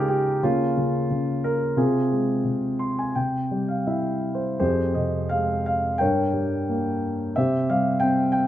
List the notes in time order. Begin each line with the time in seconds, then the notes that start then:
Already playing: C#3 G#3 D#4 F4 G4 G#4 A#4
0.08 G4
0.43 C#3 A#3 C#4 F4
0.77 C#3
1.10 C#3
1.44 A#4
1.77 C3 C4 F4 G#4
2.12 G#3
2.45 C3
2.79 C6
2.99 G#5
3.15 C3 G5
3.51 G3
3.68 F5
3.87 E4 E5
4.35 C5
4.60 F2 G4 G#4 C5
4.95 C3 D#5
5.29 G#3 F5
5.66 F5
5.98 G2 A#4 C#5 G5
6.33 G3
6.69 A#3
7.36 C3 G4 C5 E5
7.70 G3 F5
8.00 C4 G5
8.32 G5